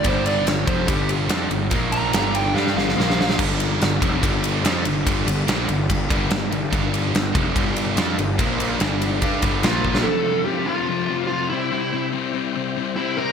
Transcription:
<<
  \new Staff \with { instrumentName = "Lead electric guitar" } { \time 4/4 \key g \dorian \tempo 4 = 144 c''8 d''8 cis''8 c''8 g'8 r4. | r8 bes''4 g''8 f''8 f''4. | r1 | r1 |
r1 | r2. f'4 | a'4 g'8 f'4. f'8 e'8~ | e'4 r2 e'8 bes'8 | }
  \new Staff \with { instrumentName = "Tonewheel organ" } { \time 4/4 \key g \dorian << { a'1 | c''4 a'2 c''4 | a'1~ | a'2 bes'2~ |
bes'1 | c''4 a'2 c''4 | a''2.~ a''8 g''8~ | g''1 | } \\ { d'1 | f'4 d'2 f'4 | d'1~ | d'1~ |
d'1 | f'4 d'2 f'4 | c''1~ | c''1 | } >> }
  \new Staff \with { instrumentName = "Tonewheel organ" } { \time 4/4 \key g \dorian g1 | bes4 g2 bes4 | g1~ | g1~ |
g1 | bes4 g2 bes4 | f'2.~ f'8 e'8~ | e'1 | }
  \new Staff \with { instrumentName = "Distorted electric guitar" } { \clef bass \time 4/4 \key g \dorian <g, d g>4 <g, d>8 <f, c f>8 <g, d g>4 <f c' f'>8 <g, d>8 | <bes, f bes>4 <g, d g>4 <g d' g'>8 <g, d g>8 <bes, f bes>4 | <g, d g>4 <g, d>8 <f, c f>8 <g, d g>4 <f c' f'>8 <g, d>8 | <g, d g>8 <g, d>8 <bes, f bes>8 <g, d>8 <g, d>8 <g, d g>8 <g, d>8 <g, d>8 |
<g, d g>4 <g, d>8 <f, c f>8 <g, d g>4 <f c' f'>8 <g, d>8 | <bes, f bes>4 <g, d g>4 <g d' g'>8 <g, d g>8 <bes, f bes>4 | <f, c f>8 <f, c f>8 <f, c f>8 <f, c f>8 <f, c f>8 <f, c f>8 <f, c f>8 <c g c'>8 | <c g c'>8 <c g c'>8 <c g c'>8 <c g c'>8 <c g c'>8 <c g c'>8 <c g c'>8 <c g c'>8 | }
  \new Staff \with { instrumentName = "Distorted electric guitar" } { \clef bass \time 4/4 \key g \dorian <g, d g>4 <g, d>8 <f, c f>8 <g, d g>4 <f c' f'>8 <g, d>8 | <bes, f bes>4 <g, d g>4 <g d' g'>8 <g, d g>8 <bes, f bes>4 | <g, d g>4 <g, d>8 <f, c f>8 <g, d g>4 <f c' f'>8 <g, d>8 | <g, d g>8 <g, d>8 <bes, f bes>8 <g, d>8 <g, d>8 <g, d g>8 <g, d>8 <g, d>8 |
<g, d g>4 <g, d>8 <f, c f>8 <g, d g>4 <f c' f'>8 <g, d>8 | <bes, f bes>4 <g, d g>4 <g d' g'>8 <g, d g>8 <bes, f bes>4 | r1 | r1 | }
  \new Staff \with { instrumentName = "Picked electric bass" } { \clef bass \time 4/4 \key g \dorian g,,4 g,,8 f,,8 g,,4 f,8 g,,8 | bes,,4 g,,4 g,8 g,,8 bes,,4 | g,,4 g,,8 f,,8 g,,4 f,8 g,,8 | g,,8 g,,8 bes,,8 g,,8 g,,8 g,,8 g,,8 g,,8 |
g,,4 g,,8 f,,8 g,,4 f,8 g,,8 | bes,,4 g,,4 g,8 g,,8 bes,,4 | r1 | r1 | }
  \new DrumStaff \with { instrumentName = "Drums" } \drummode { \time 4/4 <bd cymr>8 cymr8 <cymr sn>8 <bd cymr>8 <bd cymr>8 cymr8 <cymr sn>8 cymr8 | <bd cymr>8 cymr8 <cymr sn>8 cymr8 sn16 sn16 sn16 sn16 sn16 sn16 sn16 sn16 | <cymc bd>8 cymr8 <cymr sn>8 <bd cymr>8 <bd cymr>8 cymr8 <cymr sn>8 cymr8 | <bd cymr>8 cymr8 <cymr sn>8 cymr8 <bd cymr>8 <bd cymr>8 <cymr sn>8 cymr8 |
<bd cymr>8 cymr8 <cymr sn>8 <bd cymr>8 <bd cymr>8 cymr8 <cymr sn>8 cymr8 | <bd cymr>8 cymr8 <cymr sn>8 cymr8 <bd cymr>8 <bd cymr>8 <cymr sn>8 bd16 sn16 | r4 r4 r4 r4 | r4 r4 r4 r4 | }
>>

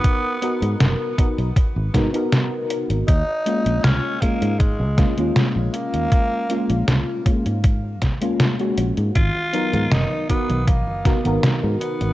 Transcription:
<<
  \new Staff \with { instrumentName = "FM electric piano" } { \time 4/4 \key gis \dorian \tempo 4 = 79 <b dis' fis' ais'>8 <b dis' fis' ais'>4 <b dis' fis' ais'>8 r8 <b dis' fis' ais'>16 <b dis' fis' ais'>4~ <b dis' fis' ais'>16 | r8 <gis ais cis' eis'>4 <gis ais cis' eis'>8 r8 <gis ais cis' eis'>16 <gis ais cis' eis'>4~ <gis ais cis' eis'>16~ | <gis ais cis' eis'>8 <gis ais cis' eis'>4 <gis ais cis' eis'>8 r8. <gis ais cis' eis'>8 <gis ais cis' fis'>8. | r8 <fis b dis' ais'>4 <b dis' fis' ais'>8 r8 <b dis' fis' ais'>16 <b dis' fis' ais'>4~ <b dis' fis' ais'>16 | }
  \new Staff \with { instrumentName = "Tenor saxophone" } { \time 4/4 \key gis \dorian b4. r2 r8 | dis'4 cis'8 ais8 gis4 r8 ais8~ | ais4. r2 r8 | eis'4 dis'8 b8 ais4 r8 b8 | }
  \new Staff \with { instrumentName = "Fingered electric bass" } { \clef bass \time 4/4 \key gis \dorian r8. gis,16 fis,,16 r8 b,,16 r16 gis,,16 gis,16 r4 gis,,16 | dis,16 r8 ais,,16 cis,16 r8 gis,8 cis,16 r16 dis,16 r16 ais,,16 r16 dis,16 | r8. ais,,16 cis,16 r8 gis,8. dis,4 ais,,16 gis,16 | gis,,16 r8 gis,16 fis,,16 r8 b,,8 fis,,16 r16 gis,,16 r16 gis,16 r16 gis,,16 | }
  \new DrumStaff \with { instrumentName = "Drums" } \drummode { \time 4/4 <hh bd>8 hh16 hh16 <hh sn>8 <hh bd>16 hh16 <hh bd>8 <hh bd sn>16 hh16 <hh sn>8 hh16 hh16 | <hh bd>8 hh16 hh16 <hh sn>8 <hh bd>16 hh16 <hh bd>8 <hh bd sn>16 hh16 <hh sn>8 hh16 hh16 | <hh bd>8 hh16 hh16 <hh sn>8 <hh bd>16 hh16 <hh bd>8 <hh bd sn>16 hh16 <hh sn>16 hh16 hh16 hh16 | <cgho hh bd>16 cgho16 hh16 <cgho hh>16 <cgho hh sn>16 cgho16 <hh bd>16 <cgho hh>16 <cgho hh bd>16 cgho16 <hh bd sn>16 <cgho hh>16 <cgho hh sn>16 cgho16 hh16 <cgho hh>16 | }
>>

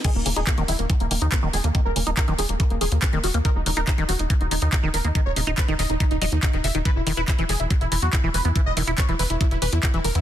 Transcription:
<<
  \new Staff \with { instrumentName = "Analog synth lead" } { \time 4/4 \key ees \phrygian \tempo 4 = 141 aes'16 bes16 bes16 aes'16 bes16 bes16 fes'16 bes16 r16 bes16 bes16 ees'16 bes16 bes16 aes'16 bes16 | bes16 bes'16 bes16 bes16 bes'16 bes16 aes'16 bes16 bes16 bes16 aes'16 bes16 bes16 bes16 ges'16 bes16 | bes'16 ees'16 ees'16 bes'16 ees'16 ees'16 ges'16 ees'16 r16 ees'16 ees'16 ees'16 ees'16 ees'16 bes'16 ees'16 | ees'16 des''16 ees'16 ees'16 ces''16 ees'16 ees''16 ees'16 ees'16 ees'16 ees''16 ees'16 ees'16 ees'16 fes''16 ees'16 |
b'16 e'16 e'16 b'16 e'16 e'16 aes'16 e'16 r16 e'16 e'16 ges'16 e'16 e'16 b'16 e'16 | e'16 ees''16 e'16 e'16 des''16 e'16 b'16 e'16 e'16 e'16 b'16 e'16 e'16 e'16 bes'16 e'16 | }
  \new Staff \with { instrumentName = "Acid bass" } { \clef bass \time 4/4 \key ees \phrygian ees16 r16 des16 ees'16 ees16 ees16 ees16 r16 fes16 r16 ees16 r8 ees16 ees16 bes16 | ees16 r16 des16 ees'16 ees16 ees16 ees16 r16 fes16 r16 ees16 r8 ees16 ees16 bes16 | ees16 r16 des16 ees'16 ees16 ees16 ees16 r16 fes16 r16 ees16 r8 ees16 ees16 bes16 | ees16 r16 des16 ees'16 ees16 ees16 ees16 r16 fes16 r16 ges16 r8 ees16 des16 ees16 |
e16 r16 ees16 e'16 e16 e16 e16 r16 ges16 r16 e16 r8 e16 e16 b16 | e16 r16 ees16 e'16 e16 e16 e16 r16 ges16 r16 e16 r8 e16 e16 b16 | }
  \new Staff \with { instrumentName = "Analog synth bass" } { \clef bass \time 4/4 \key ees \phrygian r16 ees,,16 ees,,16 ees,,16 r16 ees,,16 ees,,16 ees,,16 r16 ees,,16 ees,,16 ees,16 r16 ees,,16 ees,,16 ees,16 | r16 ees,,16 ees,,16 ees,,16 r16 ees,,16 ees,,16 ees,,16 r16 ees,,16 ees,,16 ees,16 r16 ees,,16 ees,,16 ees,16 | r16 ees,,16 ees,,16 ees,,16 r16 ees,,16 ees,,16 ees,,16 r16 ees,,16 ees,,16 ees,16 r16 ees,,16 ees,,16 ees,16 | r16 ees,,16 ees,,16 ees,,16 r16 ees,,16 ees,,16 ees,,16 r16 ees,,16 ees,,16 ees,16 r16 ees,,16 fes,,16 ees,,16 |
r16 e,,16 e,,16 e,,16 r16 e,,16 e,,16 e,,16 r16 e,,16 e,,16 e,16 r16 e,,16 e,,16 e,16 | r16 e,,16 e,,16 e,,16 r16 e,,16 e,,16 e,,16 r16 e,,16 e,,16 e,16 r16 e,,16 e,,16 e,16 | }
  \new DrumStaff \with { instrumentName = "Drums" } \drummode { \time 4/4 <cymc hh bd>8 hho16 hh16 <hc hh bd>16 hh16 hho16 hh16 <hh bd>16 hh16 hho16 hh16 <hc hh bd>8 hho16 hh16 | <hh bd>8 hho16 hh16 <hc hh bd>16 hh16 hho16 hh16 <hh bd>16 hh16 hho16 hh16 <hc hh bd>16 hh16 hho16 hh16 | <hh bd>8 hho16 hh16 <hc hh bd>16 hh16 hho16 hh16 <hh bd>16 hh16 hho16 hh16 <hc hh bd>8 hho16 hh16 | <hh bd>8 hho16 hh16 <hc hh bd>16 hh16 hho16 hh16 <hh bd>16 hh16 hho16 hh16 <hc hh bd>16 hh16 hho16 hh16 |
<hh bd>8 hho16 hh16 <hc hh bd>16 hh16 hho16 hh16 <hh bd>16 hh16 hho16 hh16 <hc hh bd>8 hho16 hh16 | <hh bd>8 hho16 hh16 <hc hh bd>16 hh16 hho16 hh16 <hh bd>16 hh16 hho16 hh16 <hc hh bd>16 hh16 hho16 hh16 | }
>>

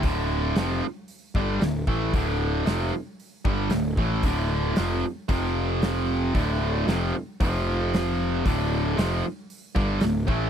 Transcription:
<<
  \new Staff \with { instrumentName = "Distorted electric guitar" } { \clef bass \time 4/4 \key d \minor \tempo 4 = 114 <d, a, d>4 <f, c f>8 r4 <g, d g>8 <d, a,>8 <a, e a>8 | <d, a, d>4 <f, c f>8 r4 <g, d g>8 <d, a,>8 <a, e a>8 | <d, a, d>4 <f, c f>8 r8 <f, c f>2 | <d, a, d>4 <f, c f>8 r8 <f, c f>2 |
<d, a, d>4 <f, c f>8 r4 <g, d g>8 <d, a,>8 <a, e a>8 | }
  \new Staff \with { instrumentName = "Picked electric bass" } { \clef bass \time 4/4 \key d \minor d,,4 f,,8 r4 g,,8 d,,8 a,,8 | d,,4 f,,8 r4 g,,8 d,,8 a,,8 | d,,4 f,,8 r8 f,,2 | d,,4 f,,8 r8 f,,2 |
d,,4 f,,8 r4 g,,8 d,,8 a,,8 | }
  \new DrumStaff \with { instrumentName = "Drums" } \drummode { \time 4/4 <hho bd>4 <hho sn>4 hho8 bd8 <hho sn>8 bd8 | <hho bd>4 <hho sn>4 hho8 bd8 <hho sn>8 bd8 | <hho bd>4 <hho sn>4 <hho bd>4 <hho sn>4 | <hho bd>4 <hho sn>4 <hho bd>4 <hho sn>4 |
<hho bd>4 <hho sn>4 hho8 bd8 <hho sn>8 bd8 | }
>>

